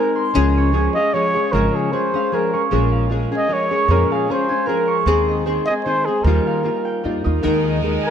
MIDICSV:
0, 0, Header, 1, 6, 480
1, 0, Start_track
1, 0, Tempo, 392670
1, 440, Time_signature, 3, 2, 24, 8
1, 9904, End_track
2, 0, Start_track
2, 0, Title_t, "Harp"
2, 0, Program_c, 0, 46
2, 0, Note_on_c, 0, 70, 77
2, 0, Note_on_c, 0, 75, 74
2, 0, Note_on_c, 0, 80, 72
2, 0, Note_on_c, 0, 84, 76
2, 186, Note_off_c, 0, 84, 0
2, 191, Note_on_c, 0, 84, 78
2, 430, Note_on_c, 0, 68, 90
2, 703, Note_on_c, 0, 73, 70
2, 777, Note_off_c, 0, 84, 0
2, 910, Note_off_c, 0, 68, 0
2, 915, Note_on_c, 0, 68, 78
2, 1172, Note_on_c, 0, 77, 76
2, 1388, Note_off_c, 0, 68, 0
2, 1393, Note_on_c, 0, 68, 73
2, 1430, Note_off_c, 0, 75, 0
2, 1563, Note_off_c, 0, 80, 0
2, 1657, Note_on_c, 0, 85, 71
2, 1875, Note_off_c, 0, 68, 0
2, 1880, Note_on_c, 0, 68, 73
2, 2144, Note_off_c, 0, 73, 0
2, 2149, Note_on_c, 0, 73, 70
2, 2354, Note_off_c, 0, 68, 0
2, 2359, Note_on_c, 0, 68, 64
2, 2532, Note_off_c, 0, 70, 0
2, 2629, Note_off_c, 0, 77, 0
2, 2634, Note_on_c, 0, 77, 73
2, 2832, Note_off_c, 0, 68, 0
2, 2837, Note_on_c, 0, 68, 70
2, 3093, Note_off_c, 0, 85, 0
2, 3098, Note_on_c, 0, 85, 66
2, 3311, Note_on_c, 0, 70, 86
2, 3564, Note_off_c, 0, 77, 0
2, 3568, Note_on_c, 0, 77, 65
2, 3779, Note_off_c, 0, 70, 0
2, 3784, Note_on_c, 0, 70, 61
2, 4054, Note_on_c, 0, 80, 66
2, 4266, Note_off_c, 0, 70, 0
2, 4271, Note_on_c, 0, 70, 76
2, 4486, Note_off_c, 0, 73, 0
2, 4549, Note_off_c, 0, 85, 0
2, 4554, Note_on_c, 0, 85, 72
2, 4755, Note_off_c, 0, 70, 0
2, 4760, Note_on_c, 0, 70, 89
2, 5026, Note_off_c, 0, 77, 0
2, 5031, Note_on_c, 0, 77, 73
2, 5220, Note_off_c, 0, 70, 0
2, 5225, Note_on_c, 0, 70, 74
2, 5477, Note_off_c, 0, 80, 0
2, 5482, Note_on_c, 0, 80, 82
2, 5616, Note_off_c, 0, 68, 0
2, 5689, Note_off_c, 0, 70, 0
2, 5693, Note_on_c, 0, 70, 84
2, 5955, Note_off_c, 0, 85, 0
2, 5960, Note_on_c, 0, 85, 78
2, 6187, Note_on_c, 0, 72, 90
2, 6260, Note_off_c, 0, 85, 0
2, 6456, Note_on_c, 0, 75, 70
2, 6671, Note_off_c, 0, 72, 0
2, 6676, Note_on_c, 0, 72, 74
2, 6935, Note_off_c, 0, 80, 0
2, 6940, Note_on_c, 0, 80, 72
2, 7065, Note_off_c, 0, 77, 0
2, 7154, Note_off_c, 0, 72, 0
2, 7159, Note_on_c, 0, 72, 82
2, 7416, Note_on_c, 0, 87, 69
2, 7626, Note_off_c, 0, 70, 0
2, 7631, Note_on_c, 0, 70, 85
2, 7908, Note_on_c, 0, 77, 70
2, 8097, Note_off_c, 0, 70, 0
2, 8102, Note_on_c, 0, 70, 58
2, 8372, Note_on_c, 0, 79, 65
2, 8445, Note_off_c, 0, 80, 0
2, 8596, Note_off_c, 0, 70, 0
2, 8601, Note_on_c, 0, 70, 68
2, 8637, Note_off_c, 0, 75, 0
2, 8850, Note_off_c, 0, 87, 0
2, 8855, Note_on_c, 0, 87, 73
2, 9072, Note_off_c, 0, 70, 0
2, 9077, Note_on_c, 0, 70, 84
2, 9339, Note_on_c, 0, 75, 59
2, 9560, Note_off_c, 0, 70, 0
2, 9565, Note_on_c, 0, 70, 61
2, 9579, Note_off_c, 0, 72, 0
2, 9820, Note_on_c, 0, 80, 69
2, 9893, Note_off_c, 0, 79, 0
2, 9904, Note_off_c, 0, 70, 0
2, 9904, Note_off_c, 0, 75, 0
2, 9904, Note_off_c, 0, 77, 0
2, 9904, Note_off_c, 0, 80, 0
2, 9904, Note_off_c, 0, 87, 0
2, 9904, End_track
3, 0, Start_track
3, 0, Title_t, "Trumpet"
3, 0, Program_c, 1, 56
3, 0, Note_on_c, 1, 70, 76
3, 331, Note_off_c, 1, 70, 0
3, 1157, Note_on_c, 1, 75, 102
3, 1389, Note_on_c, 1, 73, 109
3, 1408, Note_off_c, 1, 75, 0
3, 1862, Note_on_c, 1, 70, 90
3, 1880, Note_off_c, 1, 73, 0
3, 2145, Note_on_c, 1, 68, 75
3, 2163, Note_off_c, 1, 70, 0
3, 2349, Note_on_c, 1, 72, 93
3, 2368, Note_off_c, 1, 68, 0
3, 2868, Note_on_c, 1, 70, 79
3, 2886, Note_off_c, 1, 72, 0
3, 3230, Note_off_c, 1, 70, 0
3, 4120, Note_on_c, 1, 75, 97
3, 4319, Note_on_c, 1, 73, 110
3, 4337, Note_off_c, 1, 75, 0
3, 4788, Note_on_c, 1, 70, 87
3, 4806, Note_off_c, 1, 73, 0
3, 5042, Note_on_c, 1, 68, 85
3, 5060, Note_off_c, 1, 70, 0
3, 5272, Note_on_c, 1, 72, 102
3, 5290, Note_off_c, 1, 68, 0
3, 5717, Note_on_c, 1, 70, 88
3, 5736, Note_off_c, 1, 72, 0
3, 6086, Note_off_c, 1, 70, 0
3, 6914, Note_on_c, 1, 75, 97
3, 7016, Note_off_c, 1, 75, 0
3, 7138, Note_on_c, 1, 72, 93
3, 7401, Note_on_c, 1, 68, 85
3, 7419, Note_off_c, 1, 72, 0
3, 7621, Note_on_c, 1, 70, 72
3, 7640, Note_off_c, 1, 68, 0
3, 8592, Note_off_c, 1, 70, 0
3, 9858, Note_on_c, 1, 70, 83
3, 9904, Note_off_c, 1, 70, 0
3, 9904, End_track
4, 0, Start_track
4, 0, Title_t, "Violin section"
4, 0, Program_c, 2, 48
4, 9051, Note_on_c, 2, 63, 76
4, 9055, Note_on_c, 2, 56, 74
4, 9061, Note_on_c, 2, 70, 82
4, 9904, Note_off_c, 2, 56, 0
4, 9904, Note_off_c, 2, 63, 0
4, 9904, Note_off_c, 2, 70, 0
4, 9904, End_track
5, 0, Start_track
5, 0, Title_t, "Nylon-string guitar"
5, 0, Program_c, 3, 24
5, 0, Note_on_c, 3, 56, 57
5, 0, Note_on_c, 3, 60, 66
5, 0, Note_on_c, 3, 63, 63
5, 0, Note_on_c, 3, 70, 62
5, 414, Note_on_c, 3, 49, 91
5, 420, Note_off_c, 3, 60, 0
5, 423, Note_off_c, 3, 63, 0
5, 424, Note_off_c, 3, 56, 0
5, 425, Note_on_c, 3, 56, 98
5, 428, Note_on_c, 3, 61, 105
5, 429, Note_on_c, 3, 53, 79
5, 431, Note_off_c, 3, 70, 0
5, 436, Note_on_c, 3, 68, 98
5, 880, Note_off_c, 3, 53, 0
5, 884, Note_on_c, 3, 53, 59
5, 895, Note_off_c, 3, 56, 0
5, 895, Note_off_c, 3, 61, 0
5, 898, Note_off_c, 3, 68, 0
5, 900, Note_on_c, 3, 56, 68
5, 900, Note_on_c, 3, 61, 69
5, 903, Note_off_c, 3, 49, 0
5, 903, Note_on_c, 3, 68, 65
5, 1158, Note_off_c, 3, 68, 0
5, 1161, Note_off_c, 3, 53, 0
5, 1165, Note_off_c, 3, 61, 0
5, 1169, Note_off_c, 3, 56, 0
5, 1172, Note_on_c, 3, 68, 48
5, 1180, Note_on_c, 3, 61, 44
5, 1194, Note_on_c, 3, 56, 37
5, 1389, Note_on_c, 3, 53, 58
5, 1391, Note_off_c, 3, 68, 0
5, 1395, Note_off_c, 3, 56, 0
5, 1395, Note_off_c, 3, 61, 0
5, 1408, Note_on_c, 3, 61, 49
5, 1410, Note_on_c, 3, 56, 57
5, 1415, Note_on_c, 3, 68, 61
5, 1631, Note_off_c, 3, 68, 0
5, 1645, Note_on_c, 3, 68, 43
5, 1647, Note_off_c, 3, 61, 0
5, 1653, Note_off_c, 3, 53, 0
5, 1658, Note_off_c, 3, 56, 0
5, 1661, Note_on_c, 3, 61, 43
5, 1672, Note_on_c, 3, 56, 37
5, 1868, Note_off_c, 3, 68, 0
5, 1872, Note_on_c, 3, 49, 86
5, 1876, Note_off_c, 3, 61, 0
5, 1882, Note_off_c, 3, 56, 0
5, 1883, Note_on_c, 3, 53, 88
5, 1890, Note_on_c, 3, 68, 79
5, 1891, Note_on_c, 3, 61, 85
5, 1894, Note_on_c, 3, 56, 90
5, 2347, Note_off_c, 3, 53, 0
5, 2352, Note_on_c, 3, 53, 49
5, 2353, Note_off_c, 3, 49, 0
5, 2353, Note_off_c, 3, 61, 0
5, 2357, Note_off_c, 3, 68, 0
5, 2358, Note_on_c, 3, 61, 47
5, 2359, Note_off_c, 3, 56, 0
5, 2362, Note_on_c, 3, 68, 57
5, 2364, Note_on_c, 3, 56, 58
5, 2599, Note_off_c, 3, 68, 0
5, 2613, Note_off_c, 3, 61, 0
5, 2614, Note_on_c, 3, 68, 45
5, 2617, Note_off_c, 3, 53, 0
5, 2623, Note_off_c, 3, 56, 0
5, 2628, Note_on_c, 3, 61, 41
5, 2636, Note_on_c, 3, 56, 39
5, 2824, Note_off_c, 3, 56, 0
5, 2836, Note_off_c, 3, 68, 0
5, 2837, Note_off_c, 3, 61, 0
5, 2837, Note_on_c, 3, 53, 55
5, 2839, Note_on_c, 3, 56, 53
5, 2852, Note_on_c, 3, 61, 59
5, 2853, Note_on_c, 3, 68, 61
5, 3088, Note_off_c, 3, 68, 0
5, 3099, Note_off_c, 3, 61, 0
5, 3103, Note_on_c, 3, 68, 38
5, 3105, Note_off_c, 3, 53, 0
5, 3105, Note_off_c, 3, 56, 0
5, 3114, Note_on_c, 3, 61, 37
5, 3119, Note_on_c, 3, 56, 34
5, 3309, Note_off_c, 3, 68, 0
5, 3310, Note_off_c, 3, 61, 0
5, 3314, Note_on_c, 3, 46, 80
5, 3314, Note_on_c, 3, 53, 88
5, 3315, Note_off_c, 3, 56, 0
5, 3324, Note_on_c, 3, 61, 90
5, 3324, Note_on_c, 3, 68, 89
5, 3330, Note_on_c, 3, 56, 90
5, 3770, Note_off_c, 3, 53, 0
5, 3785, Note_on_c, 3, 53, 50
5, 3795, Note_off_c, 3, 56, 0
5, 3795, Note_off_c, 3, 61, 0
5, 3800, Note_on_c, 3, 56, 59
5, 3803, Note_off_c, 3, 46, 0
5, 3809, Note_off_c, 3, 68, 0
5, 3809, Note_on_c, 3, 61, 62
5, 3814, Note_on_c, 3, 68, 61
5, 4041, Note_off_c, 3, 68, 0
5, 4049, Note_off_c, 3, 61, 0
5, 4054, Note_off_c, 3, 56, 0
5, 4056, Note_on_c, 3, 68, 47
5, 4060, Note_off_c, 3, 53, 0
5, 4064, Note_on_c, 3, 61, 42
5, 4069, Note_on_c, 3, 56, 35
5, 4254, Note_off_c, 3, 56, 0
5, 4260, Note_off_c, 3, 61, 0
5, 4260, Note_on_c, 3, 53, 44
5, 4269, Note_on_c, 3, 56, 55
5, 4270, Note_off_c, 3, 68, 0
5, 4275, Note_on_c, 3, 61, 59
5, 4285, Note_on_c, 3, 68, 60
5, 4520, Note_off_c, 3, 68, 0
5, 4523, Note_off_c, 3, 61, 0
5, 4534, Note_on_c, 3, 68, 49
5, 4536, Note_off_c, 3, 56, 0
5, 4537, Note_off_c, 3, 53, 0
5, 4538, Note_on_c, 3, 61, 46
5, 4551, Note_on_c, 3, 56, 42
5, 4758, Note_off_c, 3, 56, 0
5, 4760, Note_off_c, 3, 68, 0
5, 4761, Note_off_c, 3, 61, 0
5, 4761, Note_on_c, 3, 46, 94
5, 4768, Note_on_c, 3, 53, 86
5, 4773, Note_on_c, 3, 56, 96
5, 4773, Note_on_c, 3, 68, 86
5, 4777, Note_on_c, 3, 61, 90
5, 5232, Note_off_c, 3, 53, 0
5, 5240, Note_off_c, 3, 46, 0
5, 5240, Note_off_c, 3, 61, 0
5, 5241, Note_off_c, 3, 56, 0
5, 5246, Note_off_c, 3, 68, 0
5, 5247, Note_on_c, 3, 53, 46
5, 5255, Note_on_c, 3, 61, 57
5, 5256, Note_on_c, 3, 56, 56
5, 5271, Note_on_c, 3, 68, 64
5, 5478, Note_off_c, 3, 68, 0
5, 5493, Note_on_c, 3, 68, 40
5, 5496, Note_off_c, 3, 56, 0
5, 5497, Note_off_c, 3, 61, 0
5, 5504, Note_off_c, 3, 53, 0
5, 5511, Note_on_c, 3, 56, 35
5, 5512, Note_on_c, 3, 61, 47
5, 5704, Note_off_c, 3, 56, 0
5, 5707, Note_on_c, 3, 53, 51
5, 5713, Note_off_c, 3, 61, 0
5, 5713, Note_off_c, 3, 68, 0
5, 5719, Note_on_c, 3, 56, 59
5, 5728, Note_on_c, 3, 61, 64
5, 5733, Note_on_c, 3, 68, 72
5, 6187, Note_off_c, 3, 56, 0
5, 6189, Note_off_c, 3, 53, 0
5, 6193, Note_on_c, 3, 51, 97
5, 6195, Note_off_c, 3, 61, 0
5, 6195, Note_off_c, 3, 68, 0
5, 6200, Note_on_c, 3, 60, 102
5, 6201, Note_on_c, 3, 56, 105
5, 6209, Note_on_c, 3, 68, 101
5, 6662, Note_off_c, 3, 56, 0
5, 6663, Note_off_c, 3, 60, 0
5, 6667, Note_off_c, 3, 51, 0
5, 6672, Note_off_c, 3, 68, 0
5, 6672, Note_on_c, 3, 51, 61
5, 6677, Note_on_c, 3, 56, 54
5, 6677, Note_on_c, 3, 60, 57
5, 6687, Note_on_c, 3, 68, 72
5, 6933, Note_off_c, 3, 51, 0
5, 6935, Note_off_c, 3, 56, 0
5, 6936, Note_off_c, 3, 60, 0
5, 6940, Note_off_c, 3, 68, 0
5, 6963, Note_on_c, 3, 68, 50
5, 6979, Note_on_c, 3, 60, 37
5, 6984, Note_on_c, 3, 56, 36
5, 7147, Note_off_c, 3, 56, 0
5, 7157, Note_off_c, 3, 60, 0
5, 7161, Note_on_c, 3, 51, 60
5, 7161, Note_on_c, 3, 56, 55
5, 7162, Note_off_c, 3, 68, 0
5, 7171, Note_on_c, 3, 60, 58
5, 7177, Note_on_c, 3, 68, 54
5, 7414, Note_off_c, 3, 68, 0
5, 7417, Note_off_c, 3, 51, 0
5, 7418, Note_off_c, 3, 56, 0
5, 7423, Note_off_c, 3, 60, 0
5, 7428, Note_on_c, 3, 68, 48
5, 7436, Note_on_c, 3, 60, 45
5, 7444, Note_on_c, 3, 56, 35
5, 7636, Note_off_c, 3, 68, 0
5, 7640, Note_off_c, 3, 60, 0
5, 7644, Note_off_c, 3, 56, 0
5, 7647, Note_on_c, 3, 51, 81
5, 7659, Note_on_c, 3, 55, 77
5, 7665, Note_on_c, 3, 58, 83
5, 7665, Note_on_c, 3, 63, 79
5, 7667, Note_on_c, 3, 65, 94
5, 8098, Note_off_c, 3, 55, 0
5, 8113, Note_on_c, 3, 55, 52
5, 8119, Note_off_c, 3, 58, 0
5, 8121, Note_off_c, 3, 65, 0
5, 8124, Note_on_c, 3, 58, 49
5, 8135, Note_off_c, 3, 63, 0
5, 8135, Note_on_c, 3, 65, 53
5, 8140, Note_on_c, 3, 63, 53
5, 8172, Note_off_c, 3, 51, 0
5, 8588, Note_off_c, 3, 55, 0
5, 8603, Note_on_c, 3, 55, 57
5, 8607, Note_off_c, 3, 58, 0
5, 8608, Note_off_c, 3, 65, 0
5, 8611, Note_off_c, 3, 63, 0
5, 8612, Note_on_c, 3, 58, 57
5, 8616, Note_on_c, 3, 63, 64
5, 8625, Note_on_c, 3, 65, 63
5, 8837, Note_off_c, 3, 65, 0
5, 8847, Note_off_c, 3, 63, 0
5, 8852, Note_on_c, 3, 65, 54
5, 8855, Note_off_c, 3, 58, 0
5, 8861, Note_on_c, 3, 63, 44
5, 8865, Note_off_c, 3, 55, 0
5, 8870, Note_on_c, 3, 58, 44
5, 9074, Note_off_c, 3, 58, 0
5, 9075, Note_off_c, 3, 65, 0
5, 9079, Note_on_c, 3, 56, 94
5, 9080, Note_off_c, 3, 63, 0
5, 9083, Note_on_c, 3, 51, 92
5, 9097, Note_on_c, 3, 70, 90
5, 9098, Note_on_c, 3, 63, 97
5, 9551, Note_off_c, 3, 51, 0
5, 9561, Note_off_c, 3, 56, 0
5, 9566, Note_on_c, 3, 51, 59
5, 9567, Note_off_c, 3, 63, 0
5, 9574, Note_on_c, 3, 56, 59
5, 9582, Note_on_c, 3, 63, 55
5, 9587, Note_off_c, 3, 70, 0
5, 9592, Note_on_c, 3, 70, 58
5, 9904, Note_off_c, 3, 51, 0
5, 9904, Note_off_c, 3, 56, 0
5, 9904, Note_off_c, 3, 63, 0
5, 9904, Note_off_c, 3, 70, 0
5, 9904, End_track
6, 0, Start_track
6, 0, Title_t, "Upright bass"
6, 0, Program_c, 4, 32
6, 442, Note_on_c, 4, 37, 89
6, 1061, Note_off_c, 4, 37, 0
6, 1870, Note_on_c, 4, 32, 95
6, 2042, Note_off_c, 4, 32, 0
6, 3330, Note_on_c, 4, 34, 80
6, 3955, Note_off_c, 4, 34, 0
6, 4747, Note_on_c, 4, 41, 88
6, 4923, Note_off_c, 4, 41, 0
6, 6185, Note_on_c, 4, 39, 82
6, 6809, Note_off_c, 4, 39, 0
6, 7633, Note_on_c, 4, 39, 94
6, 7802, Note_off_c, 4, 39, 0
6, 8616, Note_on_c, 4, 41, 67
6, 8846, Note_off_c, 4, 41, 0
6, 8875, Note_on_c, 4, 39, 72
6, 9066, Note_off_c, 4, 39, 0
6, 9108, Note_on_c, 4, 39, 85
6, 9724, Note_off_c, 4, 39, 0
6, 9904, End_track
0, 0, End_of_file